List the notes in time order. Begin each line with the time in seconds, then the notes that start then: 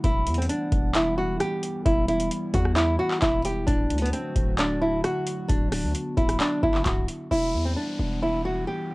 0.04 E1 E3 G3 B3 E4 F#5, kick, closed hi-hat
0.27 E2, closed hi-hat, open hi-hat
0.34 C4, closed hi-hat
0.42 closed hi-hat
0.49 D4, closed hi-hat
0.72 E1, kick, closed hi-hat
0.95 E4, clap, closed hi-hat
1.18 F#4
1.40 G4, cross-stick, closed hi-hat
1.63 closed hi-hat
1.85 E1 E4, kick, closed hi-hat
2.08 E4, closed hi-hat, open hi-hat
2.20 closed hi-hat
2.31 closed hi-hat
2.54 E2 F#4, kick, closed hi-hat
2.65 cross-stick
2.76 E4, clap, closed hi-hat
2.99 F#4
3.11 clap
3.22 E1 E4, kick, clap, closed hi-hat
3.45 G4, closed hi-hat
3.67 D1 D3 F#3 A3 D4 F#4, kick, closed hi-hat
3.90 D2, closed hi-hat, open hi-hat
3.98 B3, closed hi-hat
4.06 closed hi-hat
4.13 C4, closed hi-hat
4.36 D1, kick, closed hi-hat
4.58 D4, clap, closed hi-hat
4.81 E4
5.04 F#4, cross-stick, closed hi-hat
5.27 closed hi-hat
5.48 D1 B3 D4, kick, closed hi-hat
5.72 D4, cross-stick, open hi-hat
5.84 D2
5.95 closed hi-hat
6.17 D1 E4, kick, closed hi-hat
6.29 cross-stick, closed hi-hat
6.40 D4, clap, closed hi-hat
6.63 F#1 E4, kick
6.74 clap
6.85 C1 F#4, kick, clap, closed hi-hat
7.08 closed hi-hat
7.31 E1 E3 G3 B3 E4 F#5, downlifter
7.54 E2
7.65 C4
7.76 D4
7.99 E1
8.23 E4
8.45 F#4
8.67 G4